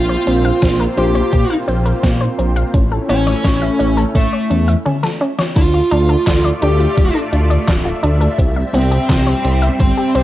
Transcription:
Already playing: detuned saw bass A#1, analog synth pad A#3 C4 F4 C5, lead electric guitar F4
0.09 synth arpeggio sound C5
0.27 detuned saw bass A#1, synth arpeggio sound C4, closed hi-hat
0.45 synth arpeggio sound F5, closed hi-hat
0.62 detuned saw bass A#1, synth arpeggio sound C4, kick, snare, closed hi-hat
0.80 synth arpeggio sound A#4
0.97 detuned saw bass A#1, synth arpeggio sound C4, lead electric guitar G4, closed hi-hat
1.15 synth arpeggio sound C5, closed hi-hat
1.32 detuned saw bass A#2, synth arpeggio sound C4, kick, closed hi-hat
1.50 synth arpeggio sound F5
1.68 detuned saw bass A#1, synth arpeggio sound C4, closed hi-hat
1.85 synth arpeggio sound A#4, closed hi-hat
2.03 detuned saw bass A#2, synth arpeggio sound C4, kick, snare, closed hi-hat
2.21 synth arpeggio sound C5
2.38 detuned saw bass A#1, synth arpeggio sound C4, closed hi-hat
2.56 synth arpeggio sound F5, closed hi-hat
2.73 detuned saw bass A1, analog synth pad A3 C#4 E4 C#5, synth arpeggio sound C#4, kick, closed hi-hat
2.92 synth arpeggio sound A4
3.09 detuned saw bass A1, synth arpeggio sound C#4, lead electric guitar C#4, closed hi-hat
3.27 synth arpeggio sound C#5, snare, closed hi-hat
3.44 detuned saw bass A1, synth arpeggio sound C#4, kick, snare, closed hi-hat
3.62 synth arpeggio sound E5
3.79 detuned saw bass A1, synth arpeggio sound C#4, closed hi-hat
3.97 synth arpeggio sound A4, closed hi-hat
4.15 detuned saw bass A2, lead electric guitar A3, synth arpeggio sound C#4, kick, closed hi-hat
4.33 synth arpeggio sound C#5
4.50 detuned saw bass E2, synth arpeggio sound C#4, closed hi-hat
4.68 synth arpeggio sound E5, closed hi-hat
4.85 synth arpeggio sound C#4, high tom
5.03 synth arpeggio sound A4, snare
5.21 synth arpeggio sound C#4
5.38 synth arpeggio sound C#5, snare
5.56 detuned saw bass D2, analog synth pad A3 F4 D5 E5, synth arpeggio sound D4, lead electric guitar F4, kick, closed hi-hat, crash
5.74 synth arpeggio sound F4
5.91 detuned saw bass D2, synth arpeggio sound D4, closed hi-hat
6.09 synth arpeggio sound A4, closed hi-hat
6.27 detuned saw bass D2, synth arpeggio sound D4, kick, snare, clap, closed hi-hat
6.44 synth arpeggio sound D5
6.62 detuned saw bass D2, synth arpeggio sound D4, lead electric guitar G4, closed hi-hat
6.80 synth arpeggio sound F4, closed hi-hat
6.97 detuned saw bass D1, synth arpeggio sound D4, kick, closed hi-hat
7.15 synth arpeggio sound A4
7.33 detuned saw bass D2, synth arpeggio sound D4, closed hi-hat
7.50 synth arpeggio sound D5, closed hi-hat
7.68 detuned saw bass D1, synth arpeggio sound D4, kick, snare, clap, closed hi-hat
7.85 synth arpeggio sound F4
8.03 detuned saw bass D2, synth arpeggio sound D4, closed hi-hat
8.21 synth arpeggio sound A4, closed hi-hat
8.39 detuned saw bass C2, analog synth pad G3 C4 C5, synth arpeggio sound C4, kick, closed hi-hat
8.56 synth arpeggio sound E5
8.74 detuned saw bass C2, lead electric guitar C4, synth arpeggio sound C4, closed hi-hat
8.91 synth arpeggio sound G4, closed hi-hat
9.09 detuned saw bass C2, synth arpeggio sound C4, kick, snare, clap, closed hi-hat
9.27 synth arpeggio sound C5
9.44 detuned saw bass C2, synth arpeggio sound C4, closed hi-hat
9.62 synth arpeggio sound E5, closed hi-hat
9.80 detuned saw bass G1, lead electric guitar C4, synth arpeggio sound C4, kick, closed hi-hat
9.97 synth arpeggio sound G4
10.15 detuned saw bass C2, synth arpeggio sound C4, closed hi-hat

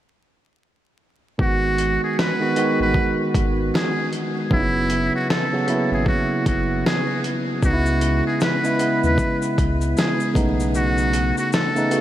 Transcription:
1.38 sub bass G#1, tine electric piano D#3 G#3 B3 F#4, muted trumpet F#4, kick
1.78 closed hi-hat
2.04 muted trumpet G#4
2.19 muted trumpet B4, snare
2.39 tine electric piano D#3 G#3 B3 F#4
2.56 tine electric piano D#3 G#3 B3 F#4, closed hi-hat
2.80 sub bass A1, muted trumpet B4
2.94 kick
3.35 sub bass G#1, kick, closed hi-hat
3.75 muted trumpet G#4, snare
4.13 closed hi-hat
4.50 sub bass F#1, tine electric piano C#3 F#3 B3 D#4, muted trumpet E4, kick
4.60 tine electric piano E4
4.90 closed hi-hat
5.15 muted trumpet F#4
5.30 muted trumpet A4, snare
5.52 tine electric piano C#3 F#3 B3 F#4
5.66 tine electric piano C#3 F#3 A#3 E4, closed hi-hat
5.75 tine electric piano B3
5.91 sub bass G#1, muted trumpet G#4
6.06 muted trumpet F#4, kick
6.46 sub bass F#1, muted trumpet F#4, kick, closed hi-hat
6.86 muted trumpet G#4, snare
7.24 closed hi-hat
7.62 sub bass C#2, tine electric piano C#3 G#3 B3, muted trumpet F#4, kick, shaker
7.67 tine electric piano D#4
7.73 tine electric piano E4
7.86 shaker
8.01 closed hi-hat, shaker
8.27 muted trumpet G#4
8.40 muted trumpet B4, snare, shaker
8.63 tine electric piano C#3 G#3 B3 E4, shaker
8.79 tine electric piano C#3 G#3 B3 E4, closed hi-hat, shaker
9.04 sub bass D#2, muted trumpet B4, shaker
9.18 kick, shaker
9.42 shaker
9.58 sub bass C#2, kick, closed hi-hat, shaker
9.81 shaker
9.97 muted trumpet G#4, snare, shaker
10.20 shaker
10.34 sub bass B1, tine electric piano C#3 A3 B3 D#4, kick, closed hi-hat, shaker
10.60 shaker
10.75 muted trumpet F#4, shaker
10.98 shaker
11.13 closed hi-hat, shaker
11.37 muted trumpet F#4, shaker
11.53 muted trumpet A4, snare, shaker
11.75 tine electric piano C#3 A3 B3 D#4, shaker
11.90 tine electric piano C#3 A3 B3 F#4, closed hi-hat, shaker

